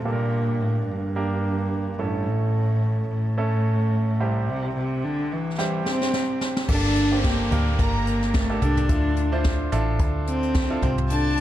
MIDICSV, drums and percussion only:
0, 0, Header, 1, 2, 480
1, 0, Start_track
1, 0, Tempo, 552486
1, 51, Time_signature, 4, 2, 24, 8
1, 9909, End_track
2, 0, Start_track
2, 0, Title_t, "Drums"
2, 4852, Note_on_c, 9, 38, 45
2, 4939, Note_off_c, 9, 38, 0
2, 5091, Note_on_c, 9, 38, 59
2, 5178, Note_off_c, 9, 38, 0
2, 5225, Note_on_c, 9, 38, 46
2, 5312, Note_off_c, 9, 38, 0
2, 5331, Note_on_c, 9, 38, 70
2, 5418, Note_off_c, 9, 38, 0
2, 5570, Note_on_c, 9, 38, 71
2, 5657, Note_off_c, 9, 38, 0
2, 5704, Note_on_c, 9, 38, 75
2, 5791, Note_off_c, 9, 38, 0
2, 5808, Note_on_c, 9, 49, 80
2, 5810, Note_on_c, 9, 36, 105
2, 5895, Note_off_c, 9, 49, 0
2, 5897, Note_off_c, 9, 36, 0
2, 6046, Note_on_c, 9, 42, 66
2, 6133, Note_off_c, 9, 42, 0
2, 6286, Note_on_c, 9, 42, 60
2, 6290, Note_on_c, 9, 38, 88
2, 6293, Note_on_c, 9, 36, 94
2, 6373, Note_off_c, 9, 42, 0
2, 6377, Note_off_c, 9, 38, 0
2, 6380, Note_off_c, 9, 36, 0
2, 6530, Note_on_c, 9, 42, 72
2, 6531, Note_on_c, 9, 43, 59
2, 6617, Note_off_c, 9, 42, 0
2, 6618, Note_off_c, 9, 43, 0
2, 6768, Note_on_c, 9, 36, 96
2, 6768, Note_on_c, 9, 42, 77
2, 6855, Note_off_c, 9, 36, 0
2, 6855, Note_off_c, 9, 42, 0
2, 7009, Note_on_c, 9, 42, 70
2, 7096, Note_off_c, 9, 42, 0
2, 7144, Note_on_c, 9, 38, 30
2, 7145, Note_on_c, 9, 42, 39
2, 7231, Note_off_c, 9, 38, 0
2, 7232, Note_off_c, 9, 42, 0
2, 7243, Note_on_c, 9, 42, 71
2, 7247, Note_on_c, 9, 38, 98
2, 7249, Note_on_c, 9, 36, 104
2, 7330, Note_off_c, 9, 42, 0
2, 7334, Note_off_c, 9, 38, 0
2, 7336, Note_off_c, 9, 36, 0
2, 7487, Note_on_c, 9, 43, 63
2, 7488, Note_on_c, 9, 42, 63
2, 7574, Note_off_c, 9, 43, 0
2, 7575, Note_off_c, 9, 42, 0
2, 7620, Note_on_c, 9, 43, 70
2, 7621, Note_on_c, 9, 42, 53
2, 7707, Note_off_c, 9, 43, 0
2, 7708, Note_off_c, 9, 42, 0
2, 7724, Note_on_c, 9, 42, 94
2, 7727, Note_on_c, 9, 36, 104
2, 7811, Note_off_c, 9, 42, 0
2, 7814, Note_off_c, 9, 36, 0
2, 7961, Note_on_c, 9, 42, 63
2, 8048, Note_off_c, 9, 42, 0
2, 8201, Note_on_c, 9, 42, 69
2, 8205, Note_on_c, 9, 38, 88
2, 8209, Note_on_c, 9, 36, 88
2, 8288, Note_off_c, 9, 42, 0
2, 8292, Note_off_c, 9, 38, 0
2, 8296, Note_off_c, 9, 36, 0
2, 8445, Note_on_c, 9, 42, 67
2, 8445, Note_on_c, 9, 43, 56
2, 8532, Note_off_c, 9, 42, 0
2, 8532, Note_off_c, 9, 43, 0
2, 8681, Note_on_c, 9, 42, 83
2, 8684, Note_on_c, 9, 36, 99
2, 8768, Note_off_c, 9, 42, 0
2, 8771, Note_off_c, 9, 36, 0
2, 8924, Note_on_c, 9, 42, 67
2, 9011, Note_off_c, 9, 42, 0
2, 9060, Note_on_c, 9, 42, 44
2, 9147, Note_off_c, 9, 42, 0
2, 9160, Note_on_c, 9, 42, 74
2, 9164, Note_on_c, 9, 38, 96
2, 9167, Note_on_c, 9, 36, 109
2, 9247, Note_off_c, 9, 42, 0
2, 9251, Note_off_c, 9, 38, 0
2, 9254, Note_off_c, 9, 36, 0
2, 9404, Note_on_c, 9, 43, 64
2, 9405, Note_on_c, 9, 36, 92
2, 9405, Note_on_c, 9, 42, 64
2, 9491, Note_off_c, 9, 43, 0
2, 9492, Note_off_c, 9, 36, 0
2, 9492, Note_off_c, 9, 42, 0
2, 9538, Note_on_c, 9, 43, 68
2, 9625, Note_off_c, 9, 43, 0
2, 9643, Note_on_c, 9, 42, 88
2, 9730, Note_off_c, 9, 42, 0
2, 9881, Note_on_c, 9, 42, 62
2, 9909, Note_off_c, 9, 42, 0
2, 9909, End_track
0, 0, End_of_file